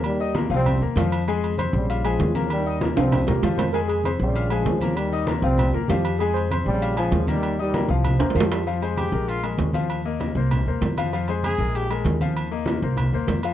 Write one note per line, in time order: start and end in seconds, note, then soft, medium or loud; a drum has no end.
0.00 0.45 D#2 loud
0.00 0.14 A#3 medium
0.00 0.14 A#4 medium
0.00 0.14 A#5 medium
0.00 high conga soft
0.00 low agogo loud
0.05 0.33 D#3 medium
0.05 0.33 G3 medium
0.19 0.32 D#4 medium
0.19 0.33 D#5 medium
0.19 0.33 D#6 medium
0.19 high conga soft
0.35 0.48 A#3 medium
0.35 0.48 A#4 medium
0.35 0.48 A#5 medium
0.35 high conga loud
0.35 low timbale medium
0.35 low agogo medium
0.50 0.79 C2 loud
0.50 0.76 F3 medium
0.50 0.80 G3 medium
0.50 0.81 C4 loud
0.50 0.76 F4 medium
0.50 0.76 F5 medium
0.50 high conga soft
0.66 high conga soft
0.66 low conga medium
0.66 low agogo loud
0.81 0.95 D#2 medium
0.81 0.94 A#3 medium
0.81 0.94 A#4 medium
0.81 0.94 A#5 medium
0.81 high conga soft
0.96 1.68 F2 loud
0.96 1.22 F3 loud
0.96 1.22 F4 medium
0.96 1.22 F5 medium
0.96 high conga medium
0.96 low timbale loud
0.96 low agogo medium
1.12 low agogo loud
1.27 1.53 G#3 loud
1.27 1.53 G#4 loud
1.27 1.54 G#5 medium
1.27 high conga soft
1.27 low agogo medium
1.43 high conga soft
1.43 low agogo loud
1.58 1.84 C4 medium
1.58 1.84 C5 medium
1.58 1.84 C6 medium
1.58 high conga medium
1.58 low timbale medium
1.58 low agogo loud
1.73 2.16 A#1 loud
1.73 2.03 C#3 medium
1.73 2.03 G3 medium
1.89 2.02 F4 medium
1.89 2.02 F5 medium
1.89 2.02 F6 medium
1.89 high conga soft
1.89 low agogo medium
2.05 2.52 C#3 medium
2.05 2.51 F3 medium
2.05 2.30 G#3 medium
2.05 2.30 G#4 medium
2.05 2.30 G#5 medium
2.05 high conga soft
2.05 low agogo loud
2.20 2.91 D#2 loud
2.20 high conga medium
2.20 low timbale medium
2.35 2.60 A#3 medium
2.35 2.61 A#4 medium
2.35 2.61 A#5 medium
2.35 high conga loud
2.35 low agogo medium
2.50 2.80 D#3 medium
2.50 2.80 G3 loud
2.50 high conga soft
2.50 low agogo loud
2.66 2.79 D#4 medium
2.66 2.79 D#5 medium
2.66 2.79 D#6 medium
2.66 high conga soft
2.81 2.94 A#3 medium
2.81 2.94 A#4 medium
2.81 2.94 A#5 medium
2.81 high conga loud
2.81 low timbale medium
2.81 low agogo medium
2.97 3.25 C2 loud
2.97 3.22 F3 medium
2.97 3.26 G3 medium
2.97 3.26 C4 loud
2.97 3.22 F4 medium
2.97 3.22 F5 medium
2.97 high conga soft
2.97 high timbale medium
3.12 high conga soft
3.12 low conga medium
3.12 high timbale medium
3.12 low agogo loud
3.27 3.42 D#2 medium
3.27 3.40 A#3 medium
3.27 3.56 G4 medium
3.27 3.41 A#4 medium
3.27 3.41 A#5 medium
3.27 high conga soft
3.27 low conga medium
3.27 low timbale loud
3.42 4.14 F2 loud
3.42 3.69 F3 medium
3.42 3.69 F4 medium
3.42 3.69 F5 medium
3.42 high conga medium
3.42 low timbale loud
3.42 low agogo medium
3.58 3.65 C5 loud
3.58 high conga medium
3.58 low timbale loud
3.58 low agogo loud
3.73 3.99 G#3 medium
3.73 3.99 G#4 medium
3.73 3.80 A#4 loud
3.73 3.99 G#5 medium
3.73 high conga soft
3.73 low agogo medium
3.88 4.10 G#4 medium
3.88 high conga soft
3.88 low agogo medium
4.04 4.30 C4 medium
4.04 4.30 C5 medium
4.04 4.31 C6 medium
4.04 high conga medium
4.04 low timbale medium
4.04 low agogo loud
4.20 4.63 A#1 loud
4.20 4.49 C#3 medium
4.20 4.50 G3 medium
4.35 4.48 F4 medium
4.35 4.48 F5 medium
4.35 4.48 F6 medium
4.35 high conga soft
4.35 low agogo medium
4.50 4.97 C#3 medium
4.50 4.97 F3 medium
4.50 4.76 G#3 medium
4.50 4.76 G#4 medium
4.50 4.76 G#5 medium
4.50 high conga soft
4.50 low agogo loud
4.65 5.37 D#2 medium
4.65 high conga medium
4.65 low timbale medium
4.81 5.07 A#3 medium
4.81 5.07 A#4 medium
4.81 5.07 A#5 medium
4.81 high conga medium
4.81 low agogo medium
4.96 5.28 D#3 medium
4.96 5.28 G3 loud
4.96 high conga soft
4.96 low agogo loud
5.12 5.25 D#4 loud
5.12 5.25 D#5 medium
5.12 5.25 D#6 medium
5.12 high conga soft
5.27 5.40 A#3 medium
5.27 5.40 A#4 medium
5.27 5.40 A#5 medium
5.27 high conga loud
5.27 low timbale medium
5.27 low agogo medium
5.42 5.71 C2 loud
5.42 5.68 F3 medium
5.42 5.72 G3 medium
5.42 5.72 C4 loud
5.42 5.69 F4 medium
5.42 5.69 F5 medium
5.42 high conga soft
5.58 high conga soft
5.58 low conga medium
5.58 low agogo loud
5.73 5.88 D#2 medium
5.73 5.87 A#3 medium
5.73 5.81 F4 medium
5.73 5.87 A#4 medium
5.73 5.87 A#5 medium
5.73 high conga soft
5.88 6.60 F2 loud
5.88 6.15 F3 medium
5.88 6.15 F4 medium
5.88 6.21 G4 medium
5.88 6.15 F5 medium
5.88 high conga loud
5.88 low timbale loud
5.88 low agogo medium
6.05 low agogo loud
6.19 6.46 G#3 medium
6.19 6.35 G#4 loud
6.19 6.46 G#4 loud
6.19 6.46 G#5 medium
6.19 high conga soft
6.19 low agogo medium
6.34 6.56 C5 loud
6.34 high conga soft
6.34 low agogo medium
6.50 6.76 C4 medium
6.50 6.76 C5 medium
6.50 6.76 C6 medium
6.50 high conga medium
6.50 low timbale medium
6.50 low agogo loud
6.66 7.09 A#1 loud
6.66 6.95 C#3 medium
6.66 6.95 G3 loud
6.81 6.94 F4 medium
6.81 6.94 F5 medium
6.81 6.95 F6 medium
6.81 high conga soft
6.81 low agogo medium
6.96 7.26 C#3 medium
6.96 7.26 F3 loud
6.96 7.22 G#3 medium
6.96 7.22 G#4 medium
6.96 7.22 G#5 medium
6.96 high conga soft
6.96 low agogo loud
7.11 7.83 D#2 loud
7.11 high conga medium
7.11 low timbale loud
7.27 7.58 D#3 loud
7.27 7.58 G3 loud
7.27 7.53 A#3 medium
7.27 7.53 A#4 medium
7.27 7.54 A#5 medium
7.27 high conga loud
7.27 low agogo medium
7.43 high conga soft
7.43 low agogo loud
7.58 7.88 D#3 medium
7.58 7.88 G3 medium
7.58 7.71 D#4 medium
7.58 7.71 D#5 medium
7.58 7.72 D#6 medium
7.58 high conga soft
7.74 7.87 A#3 medium
7.74 7.87 A#4 medium
7.74 7.87 A#5 medium
7.74 high conga loud
7.74 low timbale medium
7.74 low agogo medium
7.88 8.17 C2 loud
7.88 8.21 C3 medium
7.88 8.15 F3 medium
7.88 8.21 F3 medium
7.88 8.15 F4 medium
7.88 8.15 F5 medium
7.88 high conga soft
8.04 high conga soft
8.04 low conga medium
8.04 low agogo loud
8.19 8.34 D#2 medium
8.19 8.33 A#3 medium
8.19 8.33 A#4 medium
8.19 8.36 C5 loud
8.19 8.33 A#5 medium
8.19 high conga soft
8.19 high timbale loud
8.30 low timbale medium
8.35 9.07 F2 loud
8.35 8.61 F3 medium
8.35 8.61 F4 medium
8.35 8.43 A#4 loud
8.35 8.61 F5 loud
8.35 high conga loud
8.35 low agogo medium
8.40 8.64 G4 medium
8.40 low timbale loud
8.52 low timbale loud
8.52 low agogo loud
8.66 8.79 F3 medium
8.66 8.79 F4 medium
8.66 8.79 F5 medium
8.66 high conga soft
8.66 low agogo medium
8.81 9.07 G#3 medium
8.81 9.07 G#4 medium
8.81 9.08 C5 medium
8.81 high conga soft
8.81 low agogo loud
8.97 9.30 G4 medium
8.97 high conga medium
8.97 low timbale medium
8.97 low agogo loud
9.12 9.55 A#1 loud
9.12 9.38 G#3 medium
9.12 9.38 G#4 medium
9.12 9.38 A#4 medium
9.27 9.44 F4 medium
9.27 high conga soft
9.27 low agogo medium
9.43 9.69 G#3 medium
9.43 9.69 G#4 medium
9.43 9.69 A#4 medium
9.43 high conga soft
9.43 low agogo loud
9.58 10.30 D#2 loud
9.58 high conga medium
9.58 low timbale medium
9.73 9.99 F3 medium
9.73 9.99 F4 medium
9.73 10.00 F5 loud
9.73 high conga medium
9.73 low agogo medium
9.89 high conga soft
9.89 low agogo loud
10.04 10.30 A#3 medium
10.04 10.31 A#4 medium
10.04 10.31 D#5 medium
10.04 high conga soft
10.20 high conga medium
10.20 low timbale medium
10.20 low agogo medium
10.35 10.64 C2 loud
10.35 10.61 A#3 medium
10.35 10.62 A#4 medium
10.35 10.62 C5 medium
10.35 high conga soft
10.51 high conga soft
10.51 low conga medium
10.51 low agogo loud
10.66 10.80 D#2 medium
10.66 10.92 A#3 medium
10.66 10.93 A#4 medium
10.66 10.93 C5 medium
10.66 high conga soft
10.81 11.53 F2 loud
10.81 high conga medium
10.81 low timbale medium
10.81 low agogo medium
10.97 11.10 F3 medium
10.97 11.10 F4 medium
10.97 11.11 F5 medium
10.97 high conga medium
10.97 low agogo loud
11.13 11.26 F3 medium
11.13 11.26 F4 medium
11.13 11.26 F5 medium
11.13 high conga soft
11.13 low agogo medium
11.28 11.54 G#3 medium
11.28 11.54 G#4 medium
11.28 11.54 C5 medium
11.28 high conga soft
11.28 low agogo medium
11.43 11.77 G#4 medium
11.43 high conga medium
11.43 low timbale medium
11.43 low agogo loud
11.58 12.02 A#1 loud
11.58 11.85 G#3 medium
11.58 11.85 G#4 medium
11.58 11.85 A#4 medium
11.74 11.91 G4 medium
11.74 high conga soft
11.74 low agogo medium
11.90 12.15 G#3 medium
11.90 12.16 G#4 medium
11.90 12.16 A#4 medium
11.90 high conga soft
11.90 low agogo loud
12.05 12.77 D#2 loud
12.05 high conga medium
12.05 low timbale loud
12.21 12.46 F3 medium
12.21 12.46 F4 medium
12.21 12.47 F5 medium
12.21 high conga medium
12.21 low agogo medium
12.35 high conga soft
12.35 low agogo loud
12.51 12.77 A#3 medium
12.51 12.77 A#4 medium
12.51 12.77 D#5 medium
12.51 high conga soft
12.66 high conga loud
12.66 low timbale medium
12.66 low agogo medium
12.82 13.11 C2 loud
12.82 13.08 A#3 medium
12.82 13.08 A#4 medium
12.82 13.08 C5 medium
12.82 high conga soft
12.97 high conga soft
12.97 low conga medium
12.97 low agogo loud
13.12 13.27 D#2 medium
13.12 13.39 A#3 medium
13.12 13.39 A#4 medium
13.12 13.39 C5 medium
13.12 high conga soft
13.27 13.54 F2 medium
13.27 high conga medium
13.27 low timbale medium
13.27 low agogo medium
13.43 13.54 F3 medium
13.43 13.54 F4 medium
13.43 13.54 F5 medium
13.43 low agogo loud